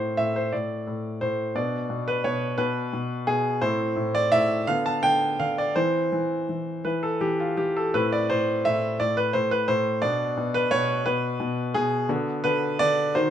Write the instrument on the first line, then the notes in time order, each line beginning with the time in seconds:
grand piano
Already playing: A2 C4 E4 C5
0.17 A2 E5
0.36 C5
0.53 A2 D5
0.87 A2
1.21 A2 C5
1.55 B2 B3 D4 D5
1.90 B2
2.08 B4
2.24 B2 C#5
2.58 B2 B4
2.93 B2
3.27 B2 G#4
3.62 A2 C4 E4 C5
3.96 A2
4.15 D5
4.32 A2 E5
4.67 D3 B3 F4 F5
4.86 A5
5.03 D3 G5
5.40 D3 F5
5.58 D5
5.76 E3 C4 E4 C5
6.12 E3
6.49 E3
6.85 E3 E4 B4
7.03 A4
7.21 E3 G4
7.40 F4
7.57 E3 G4
7.77 A4
7.94 A2 C4 E4 B4
8.13 D5
8.30 A2 C5
8.65 A2 E5
9.00 A2 D5
9.17 B4
9.33 A2 C5
9.51 B4
9.68 A2 C5
10.02 B2 B3 D4 D5
10.37 B2
10.54 B4
10.71 B2 C#5
11.06 B2 B4
11.40 B2
11.74 B2 G#4
12.09 D3 B3 F#4
12.44 D3 B4
12.79 D3 D5
13.15 D#3 D#4 F#4 C5